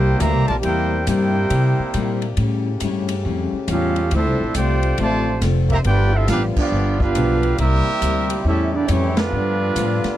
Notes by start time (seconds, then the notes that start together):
Already playing: C2 G3 A#3 C4 E4 G4 A#4 C5 G5
0.19 D2 C3 E3 G3 A#3 E4 G4 C5 E5 A#5, hi-hat pedal, ride
0.34 C2
0.46 A#1 A3 F4 A#4 D5 A5, ride
0.61 E2 C3 A#3 E4 G4 A#4 C5 G5, ride
0.65 G3 A#3 E4
1.04 G2 C3 G3 A#3 E4 G4 A#4 C5 G5, hi-hat pedal, ride
1.09 A#3 E4
1.50 C3 G3 A#3 E4, ride
1.79 muted upright bass stroke
1.94 A#2 C3 G3 A#3 E4, hi-hat pedal, ride
2.22 ride
2.37 A2 C#3 G3 A3 C#4 E4 G4, ride
2.80 G2 A2 G3 C#4, hi-hat pedal, ride
2.84 E4
3.08 ride
3.25 F2 A2 G3 C#4 E4
3.53 muted upright bass stroke
3.68 E2 A2 G3 C#4 E4 F4 G4 A4 F5, hi-hat pedal, ride
3.96 ride
4.11 D2 D3 F3 A3 C4 D4 E4 A4 C5 E5, ride
4.15 F4
4.26 C2
4.40 A1
4.55 C2 D3 A3 C4 F4 G4 C5 D5 G5, hi-hat pedal, ride
4.83 ride
4.98 A1 C3 D3 F3 A3 C4 F4 C5 D5 A5, ride
5.02 F4
5.41 F1 D3 A3 C4 F4, snare, hi-hat pedal, ride
5.69 A#3 G4 C5 E5 A#5, kick, ride
5.84 G1 G2 F3 G3 B3 D4 F4 G4 B4 D5 G5, ride
6.13 C4 E4 F4 A4 E5
6.28 A1 G2 F3 B3 D4 F4 G4 B4 F5, snare, hi-hat pedal, ride
6.56 F3 B3 D4 F4 G4 D5, kick, crash
6.72 G1 G2 F3 B3 D4
7.00 B3 D4 F4 G4 B4 F5, kick
7.15 B1 G2 F3 B3 D4, hi-hat pedal, ride
7.43 ride
7.57 C2 C3 G3 A#3 C4 E4 G4 A#4 E5, ride
7.62 E4
8.01 D2 C3 G3 A#3 E4, hi-hat pedal, ride
8.30 ride
8.44 E2 A2 C#3 G3 A3 C#4 E4 G4 A4 E5
8.48 C#4 E4
8.73 A#3 D4 E4 G4 D5
8.88 F2 A2 E3 G3 A3 C#4 E4 G4 C#5, hi-hat pedal, ride
9.16 D3 F3 G3 B3 D4 F4 B4, snare, ride
9.32 G2 D3 F3 B3 F4
9.36 D4
9.75 G2 A2 F3 B3 D4, hi-hat pedal, ride
10.04 muted upright bass stroke, snare, ride